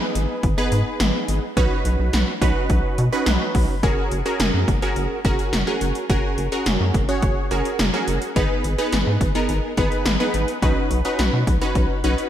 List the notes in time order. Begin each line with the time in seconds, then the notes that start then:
Already playing: B3 D#4 G#4 B4
0.15 G#1, closed hi-hat
0.43 G#1, kick, closed hi-hat
0.58 B3 D#4 G#4 B4
0.72 G#2, closed hi-hat
1.00 G#1, snare, closed hi-hat
1.28 G#1, closed hi-hat
1.57 B1 C#4 D#4 F#4 B4, kick, closed hi-hat
1.85 B1, closed hi-hat
1.99 B1
2.13 B1, snare, closed hi-hat
2.42 B1 C#4 D#4 F#4 B4, kick, closed hi-hat
2.70 B1, kick, closed hi-hat
2.98 B2, closed hi-hat
3.12 C#4 D#4 F#4 B4
3.26 B1, snare, closed hi-hat
3.55 B1, kick, open hi-hat
3.83 F#1 C#4 F#4 G#4 A#4, kick, closed hi-hat
4.11 F#1, closed hi-hat
4.26 C#4 F#4 G#4 A#4, closed hi-hat
4.40 F#1, snare, closed hi-hat
4.54 F#2
4.68 F#1, kick, closed hi-hat
4.82 C#4 F#4 G#4 A#4, closed hi-hat
4.96 F#1, closed hi-hat
5.25 F#1 C#4 F#4 G#4 A#4, kick, closed hi-hat
5.39 closed hi-hat
5.53 F#1, snare, closed hi-hat
5.67 C#4 F#4 G#4 A#4
5.81 F#1, closed hi-hat
5.95 closed hi-hat
6.10 F#1 C#4 F#4 G#4 A#4, kick, closed hi-hat
6.38 F#1, closed hi-hat
6.52 C#4 F#4 G#4 A#4, closed hi-hat
6.66 F#1, snare, closed hi-hat
6.80 F#2
6.94 F#1, kick, closed hi-hat
7.09 C#4 F#4 G#4 C#5, closed hi-hat
7.22 F#1, kick, closed hi-hat
7.51 F#1 C#4 F#4 G#4 A#4, closed hi-hat
7.65 closed hi-hat
7.79 F#1, snare, closed hi-hat
7.94 C#4 F#4 G#4 A#4
8.08 F#1, closed hi-hat
8.22 closed hi-hat
8.36 G#1 B3 D#4 G#4 B4, kick, closed hi-hat
8.64 G#1, closed hi-hat
8.78 B3 D#4 G#4 B4, closed hi-hat
8.92 G#1, snare, closed hi-hat
9.07 G#2
9.21 G#1, kick, closed hi-hat
9.35 B3 D#4 G#4 A#4, closed hi-hat
9.49 G#1, closed hi-hat
9.77 G#1 B3 D#4 G#4 B4, kick, closed hi-hat
9.92 closed hi-hat
10.06 G#1, snare, closed hi-hat
10.20 B3 D#4 G#4 B4
10.34 G#1, closed hi-hat
10.48 closed hi-hat
10.62 B1 C#4 D#4 F#4 B4, kick, closed hi-hat
10.91 B1, closed hi-hat
11.05 C#4 D#4 F#4 B4, closed hi-hat
11.19 B1, snare, closed hi-hat
11.33 B2
11.47 B1, kick, closed hi-hat
11.62 C#4 D#4 F#4 B4, closed hi-hat
11.75 B1, kick, closed hi-hat
12.04 B1 C#4 D#4 F#4 B4, closed hi-hat
12.18 closed hi-hat